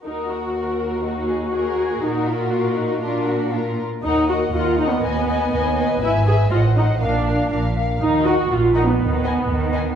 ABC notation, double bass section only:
X:1
M:2/4
L:1/8
Q:1/4=121
K:Ebm
V:1 name="Double bass section" clef=bass
z4 | z4 | z4 | z4 |
E,,2 E,,2 | E,,2 E,,2 | ^G,,,2 =A,,,2 | B,,,2 B,,,2 |
E,,2 B,,,2 | E,,2 E,,2 |]